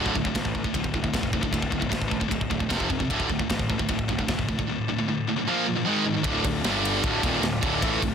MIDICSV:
0, 0, Header, 1, 5, 480
1, 0, Start_track
1, 0, Key_signature, -1, "minor"
1, 0, Tempo, 393701
1, 1868, Time_signature, 4, 2, 24, 8
1, 9930, End_track
2, 0, Start_track
2, 0, Title_t, "Pipe organ"
2, 0, Program_c, 0, 19
2, 7618, Note_on_c, 0, 65, 63
2, 7628, Note_on_c, 0, 74, 75
2, 7630, Note_on_c, 0, 50, 66
2, 7632, Note_on_c, 0, 57, 61
2, 8098, Note_off_c, 0, 65, 0
2, 8105, Note_off_c, 0, 57, 0
2, 8115, Note_on_c, 0, 67, 65
2, 8122, Note_on_c, 0, 55, 62
2, 8568, Note_off_c, 0, 74, 0
2, 8586, Note_off_c, 0, 67, 0
2, 8590, Note_off_c, 0, 55, 0
2, 8593, Note_on_c, 0, 57, 69
2, 8593, Note_on_c, 0, 74, 83
2, 8594, Note_on_c, 0, 65, 69
2, 9930, Note_off_c, 0, 50, 0
2, 9930, Note_off_c, 0, 57, 0
2, 9930, Note_off_c, 0, 65, 0
2, 9930, Note_off_c, 0, 74, 0
2, 9930, End_track
3, 0, Start_track
3, 0, Title_t, "Distorted electric guitar"
3, 0, Program_c, 1, 30
3, 0, Note_on_c, 1, 38, 88
3, 0, Note_on_c, 1, 45, 93
3, 0, Note_on_c, 1, 50, 95
3, 158, Note_off_c, 1, 38, 0
3, 165, Note_off_c, 1, 45, 0
3, 166, Note_off_c, 1, 50, 0
3, 190, Note_on_c, 1, 38, 58
3, 191, Note_on_c, 1, 45, 69
3, 309, Note_off_c, 1, 38, 0
3, 310, Note_off_c, 1, 45, 0
3, 323, Note_on_c, 1, 38, 63
3, 330, Note_on_c, 1, 45, 76
3, 417, Note_off_c, 1, 38, 0
3, 419, Note_off_c, 1, 45, 0
3, 431, Note_on_c, 1, 38, 75
3, 434, Note_on_c, 1, 45, 85
3, 646, Note_off_c, 1, 38, 0
3, 647, Note_off_c, 1, 45, 0
3, 671, Note_on_c, 1, 45, 81
3, 681, Note_on_c, 1, 38, 68
3, 778, Note_off_c, 1, 45, 0
3, 790, Note_off_c, 1, 38, 0
3, 792, Note_on_c, 1, 45, 79
3, 804, Note_on_c, 1, 38, 66
3, 898, Note_off_c, 1, 45, 0
3, 904, Note_off_c, 1, 38, 0
3, 913, Note_on_c, 1, 45, 91
3, 919, Note_on_c, 1, 38, 83
3, 1127, Note_off_c, 1, 38, 0
3, 1127, Note_off_c, 1, 45, 0
3, 1141, Note_on_c, 1, 38, 60
3, 1145, Note_on_c, 1, 45, 77
3, 1248, Note_off_c, 1, 38, 0
3, 1250, Note_off_c, 1, 45, 0
3, 1263, Note_on_c, 1, 38, 65
3, 1264, Note_on_c, 1, 45, 79
3, 1375, Note_off_c, 1, 38, 0
3, 1380, Note_off_c, 1, 45, 0
3, 1390, Note_on_c, 1, 38, 71
3, 1395, Note_on_c, 1, 45, 90
3, 1605, Note_off_c, 1, 38, 0
3, 1608, Note_off_c, 1, 45, 0
3, 1625, Note_on_c, 1, 45, 77
3, 1635, Note_on_c, 1, 38, 70
3, 1707, Note_off_c, 1, 45, 0
3, 1719, Note_off_c, 1, 38, 0
3, 1722, Note_on_c, 1, 45, 79
3, 1733, Note_on_c, 1, 38, 62
3, 1848, Note_off_c, 1, 45, 0
3, 1849, Note_off_c, 1, 38, 0
3, 1862, Note_on_c, 1, 45, 77
3, 1864, Note_on_c, 1, 38, 80
3, 2064, Note_off_c, 1, 45, 0
3, 2066, Note_off_c, 1, 38, 0
3, 2079, Note_on_c, 1, 45, 73
3, 2081, Note_on_c, 1, 38, 58
3, 2175, Note_off_c, 1, 45, 0
3, 2186, Note_off_c, 1, 38, 0
3, 2189, Note_on_c, 1, 45, 74
3, 2201, Note_on_c, 1, 38, 62
3, 2291, Note_off_c, 1, 38, 0
3, 2294, Note_off_c, 1, 45, 0
3, 2306, Note_on_c, 1, 38, 77
3, 2309, Note_on_c, 1, 45, 74
3, 2521, Note_off_c, 1, 45, 0
3, 2535, Note_on_c, 1, 45, 76
3, 2537, Note_off_c, 1, 38, 0
3, 2552, Note_on_c, 1, 38, 67
3, 2666, Note_off_c, 1, 38, 0
3, 2666, Note_off_c, 1, 45, 0
3, 2680, Note_on_c, 1, 45, 75
3, 2681, Note_on_c, 1, 38, 60
3, 2764, Note_off_c, 1, 38, 0
3, 2768, Note_off_c, 1, 45, 0
3, 2779, Note_on_c, 1, 38, 71
3, 2782, Note_on_c, 1, 45, 90
3, 3020, Note_off_c, 1, 38, 0
3, 3021, Note_off_c, 1, 45, 0
3, 3048, Note_on_c, 1, 45, 73
3, 3051, Note_on_c, 1, 38, 64
3, 3155, Note_off_c, 1, 38, 0
3, 3156, Note_off_c, 1, 45, 0
3, 3170, Note_on_c, 1, 38, 66
3, 3171, Note_on_c, 1, 45, 68
3, 3273, Note_off_c, 1, 38, 0
3, 3278, Note_on_c, 1, 41, 93
3, 3282, Note_off_c, 1, 45, 0
3, 3287, Note_on_c, 1, 48, 85
3, 3291, Note_on_c, 1, 53, 95
3, 3513, Note_off_c, 1, 48, 0
3, 3516, Note_off_c, 1, 41, 0
3, 3525, Note_off_c, 1, 53, 0
3, 3528, Note_on_c, 1, 48, 83
3, 3531, Note_on_c, 1, 41, 66
3, 3631, Note_off_c, 1, 48, 0
3, 3639, Note_off_c, 1, 41, 0
3, 3646, Note_on_c, 1, 48, 80
3, 3653, Note_on_c, 1, 41, 65
3, 3775, Note_off_c, 1, 48, 0
3, 3776, Note_off_c, 1, 41, 0
3, 3779, Note_on_c, 1, 45, 105
3, 3781, Note_on_c, 1, 38, 91
3, 3797, Note_on_c, 1, 50, 93
3, 4003, Note_off_c, 1, 45, 0
3, 4010, Note_off_c, 1, 38, 0
3, 4018, Note_off_c, 1, 50, 0
3, 4018, Note_on_c, 1, 45, 70
3, 4025, Note_on_c, 1, 38, 66
3, 4120, Note_off_c, 1, 45, 0
3, 4133, Note_off_c, 1, 38, 0
3, 4135, Note_on_c, 1, 45, 72
3, 4147, Note_on_c, 1, 38, 59
3, 4247, Note_off_c, 1, 45, 0
3, 4248, Note_off_c, 1, 38, 0
3, 4262, Note_on_c, 1, 45, 87
3, 4263, Note_on_c, 1, 38, 72
3, 4481, Note_off_c, 1, 45, 0
3, 4482, Note_off_c, 1, 38, 0
3, 4511, Note_on_c, 1, 45, 85
3, 4522, Note_on_c, 1, 38, 77
3, 4596, Note_off_c, 1, 38, 0
3, 4599, Note_off_c, 1, 45, 0
3, 4611, Note_on_c, 1, 38, 67
3, 4614, Note_on_c, 1, 45, 74
3, 4720, Note_off_c, 1, 38, 0
3, 4726, Note_off_c, 1, 45, 0
3, 4734, Note_on_c, 1, 38, 69
3, 4740, Note_on_c, 1, 45, 96
3, 4957, Note_off_c, 1, 38, 0
3, 4960, Note_off_c, 1, 45, 0
3, 4977, Note_on_c, 1, 45, 84
3, 4985, Note_on_c, 1, 38, 66
3, 5087, Note_off_c, 1, 45, 0
3, 5091, Note_off_c, 1, 38, 0
3, 5101, Note_on_c, 1, 45, 74
3, 5106, Note_on_c, 1, 38, 55
3, 5218, Note_off_c, 1, 38, 0
3, 5225, Note_off_c, 1, 45, 0
3, 5232, Note_on_c, 1, 38, 74
3, 5238, Note_on_c, 1, 45, 91
3, 5446, Note_off_c, 1, 38, 0
3, 5449, Note_off_c, 1, 45, 0
3, 5467, Note_on_c, 1, 38, 67
3, 5467, Note_on_c, 1, 45, 93
3, 5576, Note_off_c, 1, 45, 0
3, 5585, Note_off_c, 1, 38, 0
3, 5591, Note_on_c, 1, 45, 78
3, 5600, Note_on_c, 1, 38, 65
3, 5705, Note_off_c, 1, 38, 0
3, 5710, Note_off_c, 1, 45, 0
3, 5720, Note_on_c, 1, 38, 71
3, 5733, Note_on_c, 1, 45, 83
3, 5930, Note_off_c, 1, 38, 0
3, 5937, Note_off_c, 1, 45, 0
3, 5956, Note_on_c, 1, 45, 71
3, 5959, Note_on_c, 1, 38, 57
3, 6060, Note_off_c, 1, 38, 0
3, 6064, Note_off_c, 1, 45, 0
3, 6074, Note_on_c, 1, 38, 60
3, 6079, Note_on_c, 1, 45, 74
3, 6182, Note_off_c, 1, 38, 0
3, 6184, Note_off_c, 1, 45, 0
3, 6197, Note_on_c, 1, 38, 77
3, 6198, Note_on_c, 1, 45, 83
3, 6409, Note_off_c, 1, 38, 0
3, 6409, Note_off_c, 1, 45, 0
3, 6432, Note_on_c, 1, 45, 80
3, 6439, Note_on_c, 1, 38, 70
3, 6525, Note_off_c, 1, 45, 0
3, 6532, Note_off_c, 1, 38, 0
3, 6539, Note_on_c, 1, 45, 76
3, 6547, Note_on_c, 1, 38, 56
3, 6664, Note_off_c, 1, 45, 0
3, 6667, Note_off_c, 1, 38, 0
3, 6679, Note_on_c, 1, 46, 98
3, 6688, Note_on_c, 1, 53, 98
3, 6693, Note_on_c, 1, 58, 101
3, 6899, Note_off_c, 1, 46, 0
3, 6904, Note_off_c, 1, 53, 0
3, 6906, Note_off_c, 1, 58, 0
3, 6922, Note_on_c, 1, 53, 80
3, 6933, Note_on_c, 1, 46, 63
3, 7014, Note_off_c, 1, 46, 0
3, 7016, Note_off_c, 1, 53, 0
3, 7028, Note_on_c, 1, 46, 59
3, 7031, Note_on_c, 1, 53, 71
3, 7148, Note_off_c, 1, 46, 0
3, 7150, Note_off_c, 1, 53, 0
3, 7155, Note_on_c, 1, 44, 88
3, 7162, Note_on_c, 1, 51, 91
3, 7180, Note_on_c, 1, 56, 104
3, 7377, Note_off_c, 1, 44, 0
3, 7377, Note_off_c, 1, 51, 0
3, 7390, Note_off_c, 1, 56, 0
3, 7392, Note_on_c, 1, 51, 82
3, 7402, Note_on_c, 1, 44, 69
3, 7506, Note_off_c, 1, 51, 0
3, 7507, Note_off_c, 1, 44, 0
3, 7521, Note_on_c, 1, 44, 61
3, 7521, Note_on_c, 1, 51, 84
3, 7608, Note_off_c, 1, 44, 0
3, 7613, Note_on_c, 1, 38, 94
3, 7628, Note_off_c, 1, 51, 0
3, 7631, Note_on_c, 1, 50, 114
3, 7633, Note_on_c, 1, 45, 106
3, 7853, Note_off_c, 1, 38, 0
3, 7862, Note_off_c, 1, 50, 0
3, 7863, Note_off_c, 1, 45, 0
3, 7876, Note_on_c, 1, 38, 57
3, 7880, Note_on_c, 1, 45, 68
3, 8064, Note_off_c, 1, 38, 0
3, 8066, Note_off_c, 1, 45, 0
3, 8110, Note_on_c, 1, 43, 95
3, 8113, Note_on_c, 1, 50, 103
3, 8130, Note_on_c, 1, 55, 112
3, 8581, Note_off_c, 1, 43, 0
3, 8583, Note_off_c, 1, 50, 0
3, 8591, Note_off_c, 1, 55, 0
3, 8593, Note_on_c, 1, 38, 96
3, 8602, Note_on_c, 1, 45, 112
3, 8614, Note_on_c, 1, 50, 101
3, 8812, Note_off_c, 1, 38, 0
3, 8817, Note_on_c, 1, 39, 90
3, 8818, Note_off_c, 1, 50, 0
3, 8819, Note_off_c, 1, 45, 0
3, 8823, Note_on_c, 1, 51, 102
3, 8824, Note_on_c, 1, 46, 106
3, 9055, Note_off_c, 1, 39, 0
3, 9058, Note_off_c, 1, 46, 0
3, 9058, Note_off_c, 1, 51, 0
3, 9070, Note_on_c, 1, 38, 72
3, 9072, Note_on_c, 1, 45, 76
3, 9261, Note_off_c, 1, 38, 0
3, 9262, Note_off_c, 1, 45, 0
3, 9302, Note_on_c, 1, 38, 99
3, 9305, Note_on_c, 1, 50, 99
3, 9315, Note_on_c, 1, 45, 111
3, 9526, Note_off_c, 1, 45, 0
3, 9536, Note_off_c, 1, 38, 0
3, 9539, Note_off_c, 1, 50, 0
3, 9540, Note_on_c, 1, 52, 112
3, 9541, Note_on_c, 1, 45, 99
3, 9548, Note_on_c, 1, 57, 116
3, 9760, Note_off_c, 1, 45, 0
3, 9770, Note_off_c, 1, 52, 0
3, 9772, Note_on_c, 1, 38, 59
3, 9775, Note_on_c, 1, 45, 78
3, 9780, Note_off_c, 1, 57, 0
3, 9930, Note_off_c, 1, 38, 0
3, 9930, Note_off_c, 1, 45, 0
3, 9930, End_track
4, 0, Start_track
4, 0, Title_t, "Picked electric bass"
4, 0, Program_c, 2, 34
4, 174, Note_on_c, 2, 26, 86
4, 334, Note_off_c, 2, 26, 0
4, 416, Note_on_c, 2, 33, 85
4, 731, Note_off_c, 2, 33, 0
4, 898, Note_on_c, 2, 26, 83
4, 1057, Note_off_c, 2, 26, 0
4, 1140, Note_on_c, 2, 26, 78
4, 1298, Note_off_c, 2, 26, 0
4, 1383, Note_on_c, 2, 29, 85
4, 1695, Note_off_c, 2, 29, 0
4, 1851, Note_on_c, 2, 26, 97
4, 2012, Note_off_c, 2, 26, 0
4, 2091, Note_on_c, 2, 26, 94
4, 2252, Note_off_c, 2, 26, 0
4, 2327, Note_on_c, 2, 33, 82
4, 2644, Note_off_c, 2, 33, 0
4, 2812, Note_on_c, 2, 26, 89
4, 2972, Note_off_c, 2, 26, 0
4, 3052, Note_on_c, 2, 26, 89
4, 3212, Note_off_c, 2, 26, 0
4, 3279, Note_on_c, 2, 29, 88
4, 3599, Note_off_c, 2, 29, 0
4, 3771, Note_on_c, 2, 26, 88
4, 3932, Note_off_c, 2, 26, 0
4, 4011, Note_on_c, 2, 26, 95
4, 4172, Note_off_c, 2, 26, 0
4, 4262, Note_on_c, 2, 33, 89
4, 4574, Note_off_c, 2, 33, 0
4, 4741, Note_on_c, 2, 26, 83
4, 4898, Note_off_c, 2, 26, 0
4, 4975, Note_on_c, 2, 26, 90
4, 5135, Note_off_c, 2, 26, 0
4, 5219, Note_on_c, 2, 29, 88
4, 5532, Note_off_c, 2, 29, 0
4, 7608, Note_on_c, 2, 26, 100
4, 7840, Note_off_c, 2, 26, 0
4, 7854, Note_on_c, 2, 26, 84
4, 8084, Note_off_c, 2, 26, 0
4, 8091, Note_on_c, 2, 31, 87
4, 8545, Note_off_c, 2, 31, 0
4, 8577, Note_on_c, 2, 26, 88
4, 8805, Note_off_c, 2, 26, 0
4, 8813, Note_on_c, 2, 27, 93
4, 9021, Note_off_c, 2, 27, 0
4, 9029, Note_on_c, 2, 26, 88
4, 9270, Note_off_c, 2, 26, 0
4, 9291, Note_on_c, 2, 26, 96
4, 9522, Note_off_c, 2, 26, 0
4, 9536, Note_on_c, 2, 33, 102
4, 9764, Note_off_c, 2, 33, 0
4, 9772, Note_on_c, 2, 26, 84
4, 9930, Note_off_c, 2, 26, 0
4, 9930, End_track
5, 0, Start_track
5, 0, Title_t, "Drums"
5, 70, Note_on_c, 9, 36, 86
5, 189, Note_off_c, 9, 36, 0
5, 189, Note_on_c, 9, 36, 85
5, 304, Note_off_c, 9, 36, 0
5, 304, Note_on_c, 9, 36, 81
5, 426, Note_off_c, 9, 36, 0
5, 427, Note_on_c, 9, 36, 90
5, 432, Note_on_c, 9, 53, 69
5, 441, Note_on_c, 9, 38, 114
5, 549, Note_off_c, 9, 36, 0
5, 550, Note_on_c, 9, 36, 77
5, 554, Note_off_c, 9, 53, 0
5, 563, Note_off_c, 9, 38, 0
5, 668, Note_off_c, 9, 36, 0
5, 668, Note_on_c, 9, 36, 84
5, 785, Note_off_c, 9, 36, 0
5, 785, Note_on_c, 9, 36, 78
5, 905, Note_off_c, 9, 36, 0
5, 905, Note_on_c, 9, 36, 82
5, 909, Note_on_c, 9, 53, 63
5, 1027, Note_off_c, 9, 36, 0
5, 1028, Note_on_c, 9, 36, 86
5, 1031, Note_off_c, 9, 53, 0
5, 1145, Note_off_c, 9, 36, 0
5, 1145, Note_on_c, 9, 36, 76
5, 1266, Note_off_c, 9, 36, 0
5, 1266, Note_on_c, 9, 36, 76
5, 1384, Note_off_c, 9, 36, 0
5, 1384, Note_on_c, 9, 36, 85
5, 1392, Note_on_c, 9, 53, 64
5, 1400, Note_on_c, 9, 38, 109
5, 1502, Note_off_c, 9, 36, 0
5, 1502, Note_on_c, 9, 36, 82
5, 1514, Note_off_c, 9, 53, 0
5, 1522, Note_off_c, 9, 38, 0
5, 1622, Note_off_c, 9, 36, 0
5, 1622, Note_on_c, 9, 36, 86
5, 1742, Note_off_c, 9, 36, 0
5, 1742, Note_on_c, 9, 36, 81
5, 1861, Note_off_c, 9, 36, 0
5, 1861, Note_on_c, 9, 36, 79
5, 1874, Note_on_c, 9, 53, 69
5, 1980, Note_off_c, 9, 36, 0
5, 1980, Note_on_c, 9, 36, 77
5, 1996, Note_off_c, 9, 53, 0
5, 2098, Note_off_c, 9, 36, 0
5, 2098, Note_on_c, 9, 36, 90
5, 2220, Note_off_c, 9, 36, 0
5, 2220, Note_on_c, 9, 36, 83
5, 2338, Note_off_c, 9, 36, 0
5, 2338, Note_on_c, 9, 36, 95
5, 2348, Note_on_c, 9, 53, 74
5, 2356, Note_on_c, 9, 38, 108
5, 2457, Note_off_c, 9, 36, 0
5, 2457, Note_on_c, 9, 36, 84
5, 2470, Note_off_c, 9, 53, 0
5, 2478, Note_off_c, 9, 38, 0
5, 2578, Note_off_c, 9, 36, 0
5, 2578, Note_on_c, 9, 36, 86
5, 2697, Note_off_c, 9, 36, 0
5, 2697, Note_on_c, 9, 36, 75
5, 2819, Note_off_c, 9, 36, 0
5, 2819, Note_on_c, 9, 36, 77
5, 2825, Note_on_c, 9, 53, 66
5, 2941, Note_off_c, 9, 36, 0
5, 2941, Note_on_c, 9, 36, 87
5, 2947, Note_off_c, 9, 53, 0
5, 3059, Note_off_c, 9, 36, 0
5, 3059, Note_on_c, 9, 36, 86
5, 3174, Note_off_c, 9, 36, 0
5, 3174, Note_on_c, 9, 36, 71
5, 3295, Note_off_c, 9, 36, 0
5, 3295, Note_on_c, 9, 36, 87
5, 3298, Note_on_c, 9, 53, 73
5, 3306, Note_on_c, 9, 38, 112
5, 3416, Note_off_c, 9, 36, 0
5, 3416, Note_on_c, 9, 36, 83
5, 3419, Note_off_c, 9, 53, 0
5, 3428, Note_off_c, 9, 38, 0
5, 3535, Note_off_c, 9, 36, 0
5, 3535, Note_on_c, 9, 36, 86
5, 3657, Note_off_c, 9, 36, 0
5, 3658, Note_on_c, 9, 36, 75
5, 3780, Note_off_c, 9, 36, 0
5, 3780, Note_on_c, 9, 36, 84
5, 3785, Note_on_c, 9, 53, 72
5, 3899, Note_off_c, 9, 36, 0
5, 3899, Note_on_c, 9, 36, 87
5, 3907, Note_off_c, 9, 53, 0
5, 4018, Note_off_c, 9, 36, 0
5, 4018, Note_on_c, 9, 36, 82
5, 4138, Note_off_c, 9, 36, 0
5, 4138, Note_on_c, 9, 36, 80
5, 4260, Note_off_c, 9, 36, 0
5, 4264, Note_on_c, 9, 36, 87
5, 4269, Note_on_c, 9, 53, 71
5, 4277, Note_on_c, 9, 38, 112
5, 4382, Note_off_c, 9, 36, 0
5, 4382, Note_on_c, 9, 36, 85
5, 4391, Note_off_c, 9, 53, 0
5, 4399, Note_off_c, 9, 38, 0
5, 4504, Note_off_c, 9, 36, 0
5, 4506, Note_on_c, 9, 36, 80
5, 4626, Note_off_c, 9, 36, 0
5, 4626, Note_on_c, 9, 36, 82
5, 4738, Note_on_c, 9, 53, 65
5, 4744, Note_off_c, 9, 36, 0
5, 4744, Note_on_c, 9, 36, 79
5, 4860, Note_off_c, 9, 53, 0
5, 4863, Note_off_c, 9, 36, 0
5, 4863, Note_on_c, 9, 36, 88
5, 4985, Note_off_c, 9, 36, 0
5, 4986, Note_on_c, 9, 36, 79
5, 5105, Note_off_c, 9, 36, 0
5, 5105, Note_on_c, 9, 36, 76
5, 5223, Note_on_c, 9, 53, 66
5, 5225, Note_off_c, 9, 36, 0
5, 5225, Note_on_c, 9, 36, 90
5, 5231, Note_on_c, 9, 38, 106
5, 5345, Note_off_c, 9, 53, 0
5, 5346, Note_off_c, 9, 36, 0
5, 5349, Note_on_c, 9, 36, 77
5, 5353, Note_off_c, 9, 38, 0
5, 5469, Note_off_c, 9, 36, 0
5, 5469, Note_on_c, 9, 36, 89
5, 5591, Note_off_c, 9, 36, 0
5, 5593, Note_on_c, 9, 36, 78
5, 5715, Note_off_c, 9, 36, 0
5, 7610, Note_on_c, 9, 51, 104
5, 7619, Note_on_c, 9, 36, 105
5, 7732, Note_off_c, 9, 51, 0
5, 7741, Note_off_c, 9, 36, 0
5, 7856, Note_on_c, 9, 51, 81
5, 7859, Note_on_c, 9, 36, 94
5, 7978, Note_off_c, 9, 51, 0
5, 7981, Note_off_c, 9, 36, 0
5, 8100, Note_on_c, 9, 51, 107
5, 8108, Note_on_c, 9, 38, 122
5, 8222, Note_off_c, 9, 51, 0
5, 8230, Note_off_c, 9, 38, 0
5, 8354, Note_on_c, 9, 51, 84
5, 8476, Note_off_c, 9, 51, 0
5, 8579, Note_on_c, 9, 51, 98
5, 8580, Note_on_c, 9, 36, 110
5, 8701, Note_off_c, 9, 51, 0
5, 8702, Note_off_c, 9, 36, 0
5, 8819, Note_on_c, 9, 36, 100
5, 8822, Note_on_c, 9, 51, 74
5, 8941, Note_off_c, 9, 36, 0
5, 8943, Note_off_c, 9, 51, 0
5, 9060, Note_on_c, 9, 51, 94
5, 9068, Note_on_c, 9, 38, 119
5, 9181, Note_off_c, 9, 51, 0
5, 9190, Note_off_c, 9, 38, 0
5, 9300, Note_on_c, 9, 36, 109
5, 9304, Note_on_c, 9, 51, 71
5, 9422, Note_off_c, 9, 36, 0
5, 9426, Note_off_c, 9, 51, 0
5, 9539, Note_on_c, 9, 36, 110
5, 9541, Note_on_c, 9, 51, 96
5, 9661, Note_off_c, 9, 36, 0
5, 9663, Note_off_c, 9, 51, 0
5, 9783, Note_on_c, 9, 36, 95
5, 9791, Note_on_c, 9, 51, 77
5, 9905, Note_off_c, 9, 36, 0
5, 9913, Note_off_c, 9, 51, 0
5, 9930, End_track
0, 0, End_of_file